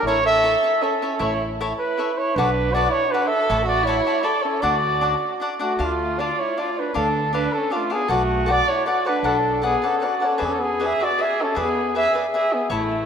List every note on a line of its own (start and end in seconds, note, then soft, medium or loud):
0.03 0.54 A1 medium
0.03 0.23 E4 medium
0.03 0.24 C#5 loud
0.07 0.18 E4 medium
0.07 0.18 A4 medium
0.07 0.18 C#5 medium
0.07 0.18 E5 medium
0.25 0.84 A4 medium
0.25 0.84 E5 loud
0.44 0.55 E4 medium
0.44 0.55 A4 medium
0.44 0.56 C#5 medium
0.44 0.56 E5 medium
0.63 0.74 E4 soft
0.63 0.75 A4 medium
0.63 0.75 C#5 medium
0.63 0.75 E5 medium
0.82 1.22 C#4 medium
0.82 0.94 E4 medium
0.82 0.94 A4 soft
0.82 1.24 A4 medium
0.82 0.94 C#5 soft
0.82 0.95 E5 medium
1.02 1.14 E4 soft
1.02 1.14 A4 medium
1.02 1.14 C#5 medium
1.02 1.14 E5 medium
1.19 1.71 A1 medium
1.19 1.32 E4 medium
1.19 1.41 E4 medium
1.19 1.32 A4 medium
1.19 1.33 C#5 medium
1.19 1.41 C#5 medium
1.19 1.33 E5 medium
1.61 1.72 E4 medium
1.61 1.72 A4 medium
1.61 1.73 C#5 medium
1.61 1.73 E5 medium
1.78 2.15 E4 medium
1.78 2.19 B4 medium
1.97 2.10 E4 medium
1.97 2.10 A4 medium
1.97 2.11 C#5 medium
1.97 2.11 E5 medium
2.15 2.36 E4 medium
2.15 2.37 C#5 medium
2.35 2.86 B1 loud
2.35 2.72 D4 medium
2.35 2.49 F#4 medium
2.35 2.49 A4 medium
2.35 2.75 B4 loud
2.35 2.49 B4 medium
2.39 2.50 D5 medium
2.70 2.90 F#4 medium
2.70 2.93 D5 loud
2.75 2.86 F#4 medium
2.75 2.87 A4 medium
2.75 2.87 B4 medium
2.75 2.87 D5 medium
2.89 3.09 E4 medium
2.89 3.13 C#5 loud
3.08 3.28 D4 medium
3.08 3.29 B4 medium
3.14 3.25 F#4 medium
3.14 3.25 A4 medium
3.14 3.25 B4 medium
3.14 3.25 D5 medium
3.27 3.64 A4 medium
3.27 3.67 E5 loud
3.50 3.99 A1 loud
3.50 3.61 C#5 medium
3.50 3.61 E5 medium
3.50 3.61 A5 medium
3.50 3.62 B5 medium
3.65 3.85 F#4 medium
3.65 3.87 D5 medium
3.83 4.25 E4 medium
3.83 4.25 C#5 loud
3.83 3.99 C#5 medium
3.83 3.99 E5 medium
3.87 3.99 A5 medium
3.87 4.00 B5 medium
4.06 4.18 C#5 soft
4.06 4.18 E5 medium
4.06 4.18 A5 medium
4.06 4.19 B5 medium
4.23 4.46 A4 medium
4.23 4.36 C#5 medium
4.23 4.44 D5 loud
4.23 4.36 E5 medium
4.23 4.36 A5 medium
4.23 4.36 B5 medium
4.43 4.65 C#4 medium
4.43 4.63 A4 medium
4.62 5.13 D2 medium
4.62 4.75 D4 medium
4.62 5.41 F#4 medium
4.62 5.40 D5 medium
4.62 4.74 D5 medium
4.62 4.75 F#5 medium
4.62 4.75 A5 loud
5.01 5.13 D4 medium
5.01 5.13 D5 medium
5.01 5.14 F#5 medium
5.01 5.14 A5 medium
5.40 5.52 D4 medium
5.40 5.53 D5 medium
5.40 5.53 F#5 medium
5.40 5.54 A5 medium
5.59 5.81 A3 medium
5.59 5.72 D4 medium
5.59 5.85 F#4 medium
5.59 5.72 D5 medium
5.59 5.72 F#5 medium
5.59 5.73 A5 medium
5.79 6.30 D2 medium
5.79 6.21 A3 medium
5.79 5.91 D4 medium
5.79 5.91 D5 medium
5.79 5.92 F5 medium
5.79 5.92 A5 medium
5.84 6.21 F4 medium
6.19 6.31 D4 medium
6.19 6.42 F4 medium
6.19 6.31 D5 medium
6.19 6.41 D5 medium
6.19 6.31 F5 medium
6.19 6.31 A5 medium
6.39 6.62 E4 medium
6.39 6.60 C#5 medium
6.57 6.69 D4 medium
6.57 6.81 F4 medium
6.57 6.69 D5 soft
6.57 6.80 D5 medium
6.57 6.69 F5 soft
6.57 6.69 A5 medium
6.79 6.95 D4 medium
6.79 6.95 B4 medium
6.94 7.46 D2 loud
6.94 7.07 D4 medium
6.94 7.32 D4 medium
6.94 7.32 A4 loud
6.94 7.07 D5 medium
6.94 7.07 F5 medium
6.94 7.07 A5 medium
7.33 7.45 D4 medium
7.33 7.59 D4 medium
7.33 7.54 B4 medium
7.33 7.46 D5 medium
7.33 7.46 F5 medium
7.33 7.46 A5 medium
7.53 7.74 A4 loud
7.58 7.78 C#4 medium
7.70 7.83 D4 medium
7.70 7.94 F4 medium
7.70 7.83 D5 medium
7.70 7.83 F5 medium
7.70 7.83 A5 medium
7.77 7.96 A3 medium
7.90 8.02 D4 medium
7.90 8.10 G#4 loud
7.90 8.02 D5 soft
7.90 8.02 F5 medium
7.90 8.03 A5 medium
7.94 8.12 B3 medium
8.08 8.59 B1 loud
8.08 8.53 F#4 medium
8.08 8.21 A4 medium
8.08 8.21 B4 medium
8.08 8.22 D5 medium
8.08 8.21 F#5 medium
8.14 8.52 A3 medium
8.46 8.59 A4 medium
8.46 8.59 B4 medium
8.46 8.60 D5 medium
8.46 8.59 F#5 medium
8.50 8.72 F#4 medium
8.50 8.70 D5 loud
8.69 8.88 E4 medium
8.69 8.86 C#5 medium
8.86 8.98 A4 medium
8.86 8.98 B4 medium
8.86 9.08 D5 medium
8.86 8.98 D5 medium
8.86 8.98 F#5 medium
8.91 9.11 F#4 medium
9.05 9.17 A4 medium
9.05 9.17 B4 medium
9.05 9.28 B4 medium
9.05 9.17 D5 medium
9.05 9.17 F#5 medium
9.09 9.28 D4 medium
9.23 9.74 B1 medium
9.23 9.36 A4 medium
9.23 9.64 A4 medium
9.23 9.36 B4 medium
9.23 9.37 D5 medium
9.23 9.36 F#5 medium
9.28 9.65 D4 medium
9.62 9.86 B3 medium
9.62 9.88 G#4 medium
9.62 9.74 A4 medium
9.62 9.75 B4 medium
9.62 9.75 D5 medium
9.62 9.75 F#5 medium
9.82 10.05 C#4 medium
9.82 9.94 A4 medium
9.82 9.95 B4 medium
9.82 9.95 D5 medium
9.82 9.95 F#5 medium
9.86 10.06 A4 medium
10.00 10.25 F#4 medium
10.00 10.13 A4 medium
10.00 10.14 B4 soft
10.00 10.14 D5 soft
10.00 10.14 F#5 medium
10.04 10.27 D5 medium
10.20 10.47 C#4 medium
10.20 10.33 A4 soft
10.20 10.34 B4 soft
10.20 10.34 D5 soft
10.20 10.34 F#5 medium
10.25 10.47 A4 medium
10.38 10.92 E2 medium
10.38 10.52 G#4 medium
10.38 10.52 B4 medium
10.38 10.53 D5 medium
10.38 10.52 E5 medium
10.45 10.50 B3 medium
10.45 10.60 C#4 medium
10.45 10.52 G#4 medium
10.51 10.63 A4 medium
10.58 10.86 B3 medium
10.58 10.88 G#4 medium
10.80 10.92 G#4 medium
10.80 10.92 B4 medium
10.80 10.92 D5 medium
10.80 10.92 E5 medium
10.85 11.04 G#4 medium
10.85 11.06 E5 medium
10.99 11.25 F#4 medium
10.99 11.11 G#4 soft
10.99 11.11 B4 medium
10.99 11.12 D5 medium
10.99 11.12 E5 soft
11.04 11.23 D5 loud
11.18 11.30 G#4 medium
11.18 11.30 B4 soft
11.18 11.30 D5 medium
11.18 11.30 E5 medium
11.18 11.44 E5 medium
11.23 11.44 G#4 medium
11.42 11.59 C#4 medium
11.42 11.59 A4 medium
11.55 12.06 E2 medium
11.55 11.67 G#4 medium
11.55 11.68 B4 medium
11.55 11.68 D5 medium
11.55 11.68 E5 medium
11.59 11.95 B3 medium
11.59 11.93 G#4 medium
11.95 12.06 G#4 medium
11.95 12.07 B4 medium
11.95 12.07 D5 medium
11.95 12.07 E5 medium
11.95 12.14 E5 loud
11.99 12.15 G#4 medium
12.14 12.25 G#4 soft
12.14 12.25 B4 medium
12.14 12.26 D5 medium
12.14 12.26 E5 medium
12.33 12.45 G#4 medium
12.33 12.56 G#4 medium
12.33 12.45 B4 medium
12.33 12.45 D5 medium
12.33 12.55 E5 medium
12.33 12.45 E5 medium
12.53 12.72 B3 medium
12.53 12.71 G#4 medium
12.70 13.06 A1 loud
12.70 13.06 E4 medium
12.70 12.82 C#5 medium
12.70 12.82 E5 medium
12.70 12.82 A5 medium
12.70 12.82 B5 medium
12.74 13.06 A3 medium